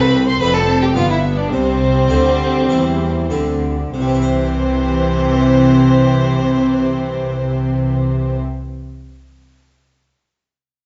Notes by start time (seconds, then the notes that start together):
Already playing: C2 C4 E4
0.00 B4 B5
0.27 C5 C6
0.40 F1 F2 A3 C4 D4 B4 B5
0.54 A4 A5
0.82 G4 G5
0.95 G1 G2 B3 D4 F4 F5
1.10 E4 E5
1.38 D4 D5
1.51 C2 C3 G3 C4 C5
2.10 D2 D3 C4 E4
2.69 E2 E3 C4 E4
3.30 D2 D3 C4 E4
3.94 C2 C3 E3 C4 C5
4.01 G3
4.08 C4
4.15 E4
4.22 C5